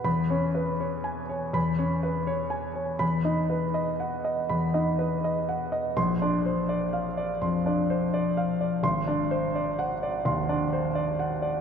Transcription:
<<
  \new Staff \with { instrumentName = "Grand piano" } { \time 4/4 \key b \major \tempo 4 = 83 << { b''8 r4. b''8 r4. | b''8 r2. r8 | bis''8 r2. r8 | bis''8 r2. r8 | } \\ { \tuplet 3/2 { r8 cis''8 b'8 cis''8 gis''8 cis''8 r8 cis''8 b'8 cis''8 gis''8 cis''8 } | \tuplet 3/2 { r8 dis''8 b'8 dis''8 fis''8 dis''8 b''8 dis''8 b'8 dis''8 fis''8 dis''8 } | \tuplet 3/2 { r8 d''8 bis'8 d''8 eis''8 d''8 bis''8 d''8 bis'8 d''8 eis''8 d''8 } | \tuplet 3/2 { r8 d''8 bis'8 d''8 fis''8 d''8 bis''8 d''8 bis'8 d''8 fis''8 d''8 } | } >> }
  \new Staff \with { instrumentName = "Grand piano" } { \clef bass \time 4/4 \key b \major \tuplet 3/2 { e,8 cis'4 } r4 \tuplet 3/2 { e,8 cis'4 } r4 | \tuplet 3/2 { e,8 dis'4 } r4 \tuplet 3/2 { e,8 dis'4 } r4 | \tuplet 3/2 { ais,,8 d'4 } r4 \tuplet 3/2 { eis,8 d'4 } r4 | \tuplet 3/2 { gis,,8 d'4 } r4 \tuplet 3/2 { dis,8 d'4 } r4 | }
>>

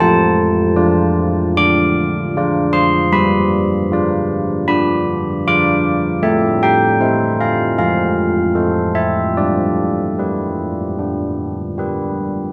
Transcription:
\new Staff \with { instrumentName = "Church bells" } { \time 4/4 \key g \mixolydian \tempo 4 = 77 << { a''2 d'''4. c'''8 | b''2 b''4 d'''4 | e''8 g''4 f''8 f''4. e''8 | d''2.~ d''8 r8 | } \\ { f4 <f' d''>4 d'4 <f' d''>4 | g4 <f' d''>4 d'4 <f' d''>4 | a4 <e' c''>4 f4 <a' c''>4 | g4 <g' b'>4 d'4 <g' b'>4 | } >> }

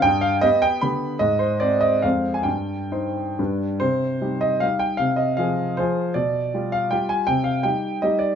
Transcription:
\new Staff \with { instrumentName = "Grand piano" } { \time 3/4 \key c \minor \tempo 4 = 153 << { g''8 f''8 ees''8 g''8 b''4 | ees''8 c''8 d''8 ees''8 f''8. aes''16 | g''2~ g''8 r8 | c''4. ees''8 f''8 g''8 |
f''8 ees''8 f''4 c''4 | d''4. f''8 g''8 aes''8 | g''8 f''8 g''4 ees''8 d''8 | } \\ { g,4 <b g'>4 <d b g'>4 | aes,4 <c' c''>4 <f, aes c' c''>4 | g,4 <ees' c''>4 <g, g d' b'>4 | c4 <g ees' g'>4 <g ees' g'>4 |
c4 <f f' aes'>4 <f f' aes'>4 | b,4 <g f' g'>4 <g f' g'>4 | c4 <g ees' g'>4 <g ees' g'>4 | } >> }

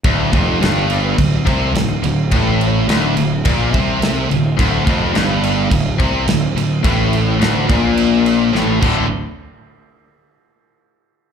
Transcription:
<<
  \new Staff \with { instrumentName = "Distorted electric guitar" } { \clef bass \time 4/4 \key d \minor \tempo 4 = 106 d,8 f,8 g,4 d,8 c8 d,8 d,8 | a,4 d,8 d,8 bes,8 c4 d,8 | d,8 f,8 g,4 d,8 c8 d,8 d,8 | a,4 d,8 bes,4. a,8 <d, a, d>8 |
r1 | }
  \new Staff \with { instrumentName = "Distorted electric guitar" } { \clef bass \time 4/4 \key d \minor d,8 f,8 g,4 d,8 c8 d,8 d,8 | a,4 d,8 d,8 bes,8 c4 d,8 | d,8 f,8 g,4 d,8 c8 d,8 d,8 | a,4 d,8 bes,4. a,8 <d, a, d>8 |
r1 | }
  \new Staff \with { instrumentName = "Picked electric bass" } { \clef bass \time 4/4 \key d \minor d,,8 f,,8 g,,4 d,,8 c,8 d,,8 d,,8 | a,,4 d,,8 d,,8 bes,,8 c,4 d,,8 | d,,8 f,,8 g,,4 d,,8 c,8 d,,8 d,,8 | a,,4 d,,8 bes,,4. a,,8 d,,8 |
r1 | }
  \new DrumStaff \with { instrumentName = "Drums" } \drummode { \time 4/4 <cymc bd>8 <cymc bd>8 <cymc sn>8 cymc8 <cymc bd>8 <cymc bd>8 <cymc sn>8 cymc8 | <cymc bd>8 cymc8 <cymc sn>8 cymc8 <cymc bd>8 <cymc bd>8 <cymc sn>8 cymc8 | <cymc bd>8 <cymc bd>8 <cymc sn>8 cymc8 <cymc bd>8 <cymc bd>8 <cymc sn>8 cymc8 | <cymc bd>8 cymc8 <cymc sn>8 <cymc bd>8 cymc8 cymc8 sn8 <cymc bd>8 |
r4 r4 r4 r4 | }
>>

